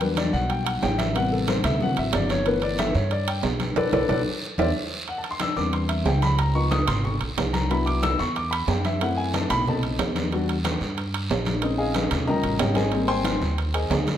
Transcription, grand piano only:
0.01 F#3 G3 D4 B4
0.17 D5
0.33 F#5
0.49 G5
0.65 F#5
0.82 G5
0.98 E5
1.15 C3 G3 B3 F#5
1.32 A4
1.49 C5
1.65 E5
1.82 E3 F#3 C4 F#5
1.99 E5
2.15 D5
2.31 C#5
2.46 E3 A3 B3 B4
2.63 D5
2.79 E5
2.96 C#5
3.12 D5
3.28 G5
3.77 A4 B4 D5
3.93 A4 B4 D5
4.09 A4 B4 D5
4.59 C5 D5 E5
5.09 F#5
5.18 A5
5.31 C6
5.42 E6
5.56 G3 B3 C4 D4 D6
5.73 C6
5.89 E5
6.06 G5
6.23 B5
6.39 A#5
6.55 F3 B3 D#4 C#6
6.71 D#6
6.88 C6
7.05 C#6
7.53 A#5
7.70 F#3 B3 D4 E4 B5
7.86 D6
8.03 E6
8.20 C#6
8.37 D6
8.51 B5
8.69 G5
8.86 E5
9.01 A3 C4 E4 F#5
9.17 G#5
9.35 A5
9.50 B5
9.68 A3 C4 D#4 A5
10.33 G3 D4 F#4
11.62 G#3 C4 C#4 D#4
11.78 G#4 D#5 F5 G#5
12.26 F3 G3 C#4 A#4 D#5 G5 A#5
12.59 G4 C#5 D#5 G5
12.76 G#4 C5 D#5 G#5
12.93 G3 A#3 C4
13.08 C5 G5 G#5 C6
13.74 G#4 C5 D#5 G#5

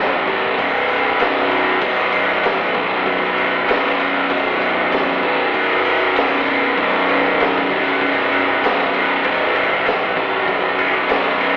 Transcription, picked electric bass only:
Already playing: A1
0.58 F#1
1.19 D1
1.82 B0
2.12 F#1
2.44 A1
3.06 F#1
3.68 D1
4.30 B0
4.60 F#1
4.91 A1
5.54 F#1
6.14 D1
6.77 B0
7.08 F#1
7.40 A1
8.01 F#1
8.62 D1
9.24 B0
9.55 F#1
9.86 A1
10.47 F#1
11.09 D1

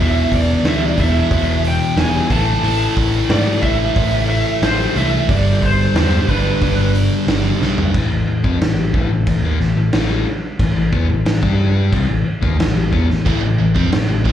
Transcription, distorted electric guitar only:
0.00 E2 B2 E3
0.64 E2 B2 E3
0.98 E2 B2 E3
1.31 E2 B2 E3
1.97 E2 B2 E3
2.30 A2 E3 A3
2.63 A2 E3 A3
3.30 A2 E3 A3
3.62 A2 E3 A3
3.96 A2 E3 A3
4.62 A2 E3 A3
4.95 A2 E3 A3
5.28 G2 D3 G3
5.95 G2 D3 G3
6.28 G2 D3 G3
6.62 G2 D3 G3
7.28 G2 D3 G3
7.61 G2 D3 G3
13.25 A2 E3
13.42 A2 E3
13.58 A2 E3
13.74 F3 C4
13.92 A2 E3
14.08 A2 E3
14.24 A2 E3

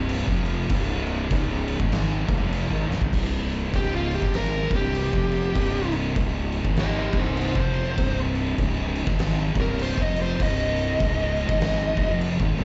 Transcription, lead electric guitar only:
3.76 G4
3.95 F4
4.15 G4
4.35 A#4
4.75 G4
6.79 G4 D#5
6.99 G4 D#5
7.19 D#4 C5
7.39 D#4 C5
7.60 C5
9.61 A#4
9.82 C5
10.03 D#5
10.22 C5
10.43 D#5

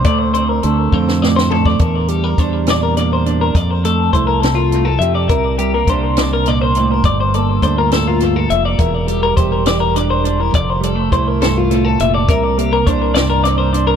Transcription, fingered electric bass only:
0.05 D2
0.64 D2
0.92 F2
1.80 E2
2.38 E2
3.55 F2
4.14 C2
5.00 F2
5.29 C2
5.87 C2
7.04 G1
7.63 D2
8.50 F1
8.79 E1
9.37 E1
10.54 F1
11.12 C2
12.00 F1
12.29 C2
12.87 C2

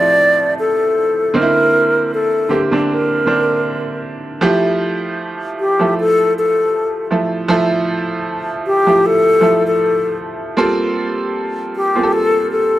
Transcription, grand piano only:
Already playing: F3 A3 C4 E4 G4 A4
1.34 D3 A#3 C4 D#4
1.42 E4
2.49 D3 A#3 C4 G4
2.71 D3 A#3 C4 D4
3.26 D3 A#3 C4 D4
4.41 F3 A3 E4 G4
5.79 F3 A3 E4 A4
7.11 F3 A3 E4 A4
7.48 F3 A3 E4 A4
8.87 F3 A3 E4 G4
9.41 F3 A3 E4 A4
10.57 G3 A#3 C4 F4 A4
11.95 G3 A#3 C4 F4 G#4
12.03 A4

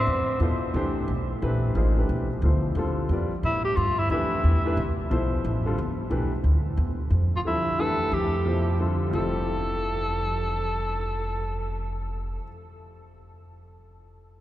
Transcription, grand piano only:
0.40 B2 E4 F4 A4 C5
0.74 E3 A3 D4 G4 C5
1.42 E3 A3 D4 G4 B4
1.75 F3 A#3 D#4 G#4 C5
1.98 E3 A3 D4 G4 B4
2.44 B2 F3 E4 A4 C5
2.77 D3 G3 C4 F4 A4
3.12 G3 C4 F4 B4 D5
4.11 E3 A3 D4 G4 B4
4.65 E3 A3 D4 G4 B4
5.10 B2 F3 E4 A4 C5
5.66 D3 G3 C4 F4 A4
6.10 E3 A3 D4 G4 B4
7.45 D3 F3 G3 C4 A4
7.79 E3 A3 D4 G4 B4
8.46 B2 F3 E4 A4 C5
8.80 D3 G3 C4 F4 A4
9.08 F2 F3
9.14 E4 G4
9.20 A4

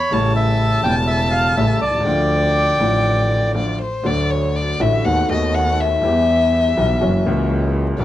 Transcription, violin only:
Already playing: B5
0.12 A5
2.06 G5
3.56 D5
3.81 C5
4.06 D5
4.31 C#5
4.56 D5
4.81 E5
5.05 F#5
5.32 D#5
5.55 F#5
5.80 E5
8.00 D5

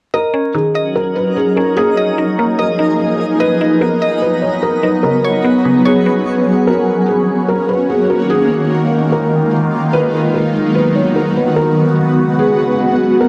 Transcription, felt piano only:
0.14 A#4
0.55 G#4
0.96 A#4
1.16 B4
1.37 G#4
1.56 A#4
1.76 G#4
2.59 A#4
3.40 B4
3.81 A#4
4.22 B4
4.42 C#5
4.63 A#4
4.83 B4
5.03 A#4
5.86 G#4
6.67 A#4
7.08 G#4
7.48 A#4
7.69 B4
7.90 G#4
8.10 A#4
8.30 G#4
9.12 A#4
9.93 B4
10.34 A#4
10.75 B4
10.95 C#5
11.16 A#4
11.36 B4
11.56 A#4
12.39 G#4
13.21 A#4

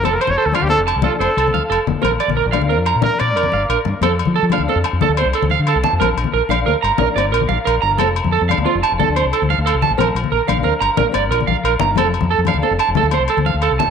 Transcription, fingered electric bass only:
0.04 F1
0.28 F1
0.46 D2
0.62 D2
0.78 F1
0.96 C2
1.20 F1
1.37 C2
1.53 D2
1.70 F1
1.86 F1
2.03 A#1
2.28 A#1
2.46 A#1
2.61 D2
2.79 F2
2.96 A#2
3.21 A#2
3.36 F2
3.53 G1
3.69 A#1
3.85 G2
4.01 F2
4.27 F3
4.42 F3
4.59 D2
4.75 F2
4.93 F2
5.09 D2
5.25 C2
5.42 D2
5.59 D3
5.75 C2
5.93 F2
6.00 A#1
6.17 A#1
6.33 A#1
6.49 A#1
6.66 D2
6.83 G1
6.99 A#1
7.16 G1
7.33 A#1
7.50 A#1
7.67 A#1
7.83 G1
8.00 F1
8.24 F2
8.41 F2
8.57 D2
8.75 F1
8.91 F1
9.09 D2
9.25 C2
9.42 D2
9.58 D2
9.74 C2
9.90 A1
9.99 A#1
10.15 A#1
10.32 A#1
10.48 A#1
10.65 D2
10.81 G1
10.98 A#1
11.14 G1
11.30 A#1
11.48 A#1
11.64 A#1
11.80 G1
11.97 F1
12.22 F2
12.38 F2
12.54 D2
12.71 F1
12.88 F1
13.03 D2
13.20 C2
13.37 D2
13.54 D2
13.71 C2
13.87 F1

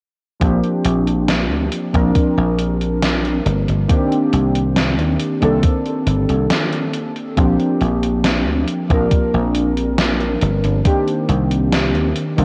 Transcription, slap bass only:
0.41 A#1
0.85 A#1
1.51 D2
1.94 A#1
2.38 A#1
3.46 G1
3.69 G1
4.33 C2
4.99 D#2
5.42 C2
6.07 G1
6.29 C2
7.38 A#1
7.81 A#1
8.47 D2
8.90 A#1
9.11 muted slap bass stroke
9.34 A#1
10.42 G1
10.64 G1
11.29 C2
11.95 D#2
12.38 C2

